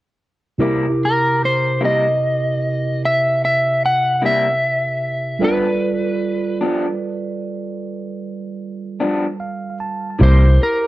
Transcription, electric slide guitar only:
1.05 1.44 A#4 medium
1.45 1.84 C5 medium
1.85 3.05 D#5 medium
3.05 3.44 E5 medium
3.45 3.84 E5 medium
3.86 4.25 F#5 medium
4.26 5.47 E5 medium
5.44 6.59 B4 medium
10.23 10.63 C5 medium
10.63 10.87 A#4 medium

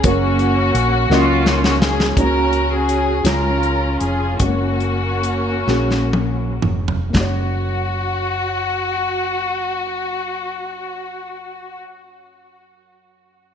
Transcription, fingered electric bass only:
0.04 0.71 F#1 medium
0.74 1.07 A#1 medium
1.10 2.12 C#2 loud
2.17 3.21 C#2 medium
3.24 3.96 C#2 medium
4.01 4.37 F1 medium
4.40 5.63 F#1 medium
5.67 6.59 A#1 medium
6.63 7.11 F1 medium
7.15 11.77 F#1 medium

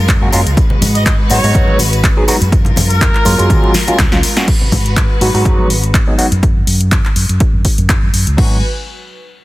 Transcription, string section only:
0.00 4.44 G#3 medium
0.00 0.55 F4 medium
0.00 0.55 A#4 medium
0.57 2.50 F#4 medium
0.57 2.50 B4 medium
2.52 4.46 F4 medium
2.52 4.46 A#4 medium
4.47 6.41 G#3 medium
4.47 6.41 F#4 medium
4.47 6.41 B4 medium
8.38 8.61 F#4 medium
8.38 8.61 B4 medium
8.38 8.61 G#5 medium

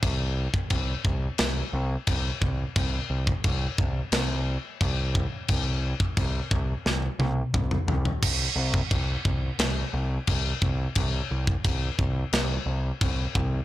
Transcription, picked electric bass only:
0.03 0.47 C2 medium
0.71 0.93 C2 medium
1.05 1.27 C2 medium
1.39 1.61 C2 medium
1.73 1.95 C2 medium
2.07 2.30 C2 loud
2.41 2.63 C2 medium
2.76 2.98 C2 loud
3.10 3.32 C2 loud
3.44 3.66 C2 medium
3.78 4.00 C2 medium
4.12 4.56 C2 medium
4.81 5.25 C2 medium
5.49 5.93 C2 medium
6.17 6.39 C2 loud
6.51 6.73 C2 medium
6.86 7.08 C2 medium
7.19 7.41 C2 medium
7.54 7.76 C2 medium
7.88 8.10 C2 loud
8.23 8.47 C2 medium
8.56 8.80 C2 loud
8.91 9.15 C2 medium
9.26 9.49 C2 medium
9.59 9.83 C2 medium
9.94 10.18 C2 loud
10.28 10.52 C2 medium
10.62 10.86 C2 medium
10.96 11.20 C2 medium
11.31 11.55 C2 medium
11.64 11.89 C2 medium
11.99 12.23 C2 medium
12.33 12.57 C2 loud
12.66 12.90 C2 loud
13.01 13.25 C2 medium
13.35 13.59 C2 loud

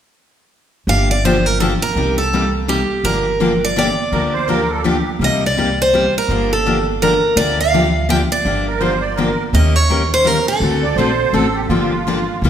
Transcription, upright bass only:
0.87 1.74 G1 medium
1.95 2.82 C2 medium
3.04 3.90 G1 medium
4.12 4.99 D2 medium
5.19 6.06 C2 medium
6.28 7.15 G1 medium
7.36 8.23 D2 medium
8.45 9.32 G1 medium
9.53 10.40 D#2 medium
10.60 10.90 D2 medium
10.96 11.28 A#1 medium
11.33 11.64 A1 medium
11.69 12.27 G1 medium
12.42 12.50 C2 medium

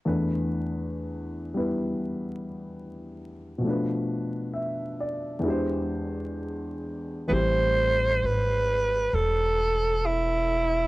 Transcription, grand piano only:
0.05 3.65 E2 soft
0.05 3.66 E3 soft
0.05 3.63 A3 soft
0.05 3.66 D4 soft
0.05 1.56 B4 soft
1.54 3.64 G3 soft
1.54 3.65 B3 soft
1.54 3.66 E4 soft
1.54 3.66 B4 soft
3.58 5.42 B2 soft
3.58 5.43 F3 soft
3.64 5.45 A3 soft
3.64 5.44 D4 soft
3.69 5.47 B4 soft
4.53 5.26 E5 soft
5.00 5.64 D5 soft
5.39 7.26 E2 soft
5.39 7.26 E3 soft
5.44 7.28 G#3 soft
5.44 7.29 D4 soft
5.48 7.30 G4 soft
5.48 7.32 C5 medium
7.28 10.87 E3 medium
7.28 10.87 G3 soft
7.28 10.87 A3 soft
7.28 10.87 C4 soft
7.33 10.87 G4 medium

